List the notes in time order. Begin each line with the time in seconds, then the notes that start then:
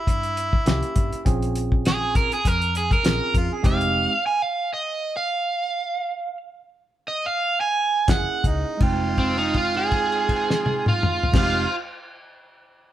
Already playing: E4
0.07 G2, kick, closed hi-hat
0.23 closed hi-hat
0.37 closed hi-hat
0.53 kick
0.66 C2 A#3 C#4 E4 G4, snare, closed hi-hat
0.83 closed hi-hat
0.96 G2, kick, closed hi-hat
1.13 muted fingered electric bass stroke, closed hi-hat
1.25 A#1 C4 C#4 F4 G#4, kick, closed hi-hat
1.42 closed hi-hat
1.55 closed hi-hat
1.72 kick
1.85 G#4, snare, closed hi-hat
2.15 A#4, kick, closed hi-hat
2.32 G#4, closed hi-hat
2.45 F2 A#4, kick, closed hi-hat
2.62 closed hi-hat
2.75 G#4, closed hi-hat
2.91 A#4, kick, closed hi-hat
3.03 A#1 C4 C#4 F4 G#4 A#4, snare, closed hi-hat
3.34 F2 F4, kick, closed hi-hat
3.51 G#4, muted fingered electric bass stroke
3.63 F1 G#3 C4 D#4 G4 F5, kick, closed hi-hat, crash
3.81 closed hi-hat
4.26 G#5
4.42 F5
4.74 D#5
5.17 F5
7.08 D#5
7.26 F5
7.61 G#5
8.08 F#1 A#3 C#4 E4 G#4 F#5, kick, snare, closed hi-hat
8.44 C#2 D#4, kick, closed hi-hat
8.64 muted fingered electric bass stroke
8.77 F1 G#3 C4 D#4, kick, crash
8.82 F4 G5
9.18 C4, kick, crash
9.37 D#4, crash
9.54 F4, kick, crash
9.74 G#4, crash
9.92 kick, crash
10.12 crash
10.29 kick, crash
10.50 snare
10.66 high tom
10.86 F4, mid tom
11.03 mid tom
11.23 floor tom
11.32 F1 G#3 C4 D#4 F4, kick, snare, crash
11.37 G4
11.43 F4